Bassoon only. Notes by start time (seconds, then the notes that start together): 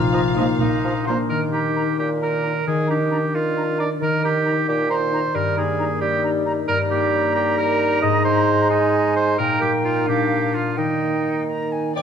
0.13 F3
0.38 F3
0.85 F3
1.08 F3
1.30 D#3
1.99 A#2
2.67 D#3
3.35 D#3
4.01 D#3
4.68 A#2
5.35 G3
6.01 G3
6.69 G3
8.03 G#3
9.39 A#3
10.78 D#3